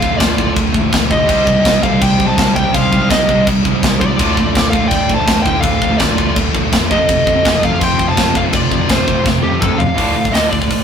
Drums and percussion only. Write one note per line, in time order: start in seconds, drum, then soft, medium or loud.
0.02 kick medium
0.20 kick loud
0.20 snare loud
0.20 crash medium
0.38 kick medium
0.56 kick loud
0.56 crash medium
0.74 kick medium
0.93 kick loud
0.93 snare loud
0.93 crash medium
1.11 kick medium
1.29 kick loud
1.29 crash medium
1.47 kick medium
1.65 kick loud
1.65 snare loud
1.65 crash medium
1.83 kick medium
2.02 kick loud
2.02 crash medium
2.20 kick medium
2.38 kick loud
2.38 snare loud
2.38 crash medium
2.56 kick medium
2.74 kick loud
2.74 crash medium
2.93 kick medium
3.10 kick loud
3.10 snare loud
3.10 crash medium
3.29 kick medium
3.47 kick loud
3.47 crash medium
3.65 kick medium
3.83 kick loud
3.83 snare loud
3.83 crash medium
4.01 kick medium
4.19 kick loud
4.19 crash medium
4.37 kick medium
4.55 kick loud
4.55 snare loud
4.55 crash medium
4.73 kick medium
4.91 kick loud
4.91 crash medium
5.10 kick medium
5.27 kick loud
5.27 snare loud
5.27 crash medium
5.46 kick medium
5.63 kick loud
5.63 crash medium
5.82 kick medium
5.99 kick loud
5.99 snare loud
5.99 crash medium
6.18 kick medium
6.36 kick loud
6.36 crash medium
6.55 kick medium
6.72 kick loud
6.72 snare loud
6.72 crash medium
6.91 kick medium
7.09 kick loud
7.09 crash medium
7.27 kick medium
7.45 kick loud
7.45 snare loud
7.45 crash medium
7.63 kick medium
7.81 kick loud
7.81 crash medium
7.99 kick medium
8.17 kick loud
8.17 snare loud
8.17 crash medium
8.35 kick medium
8.53 kick loud
8.53 crash medium
8.72 kick medium
8.89 kick loud
8.89 snare loud
8.89 crash medium
9.08 kick medium
9.26 kick loud
9.26 snare medium
9.62 kick loud
9.62 mid tom loud
9.80 floor tom medium
9.98 kick loud
9.98 open hi-hat medium
10.25 kick medium
10.34 snare loud
10.34 open hi-hat medium
10.53 kick medium
10.62 kick medium
10.71 kick medium
10.71 open hi-hat medium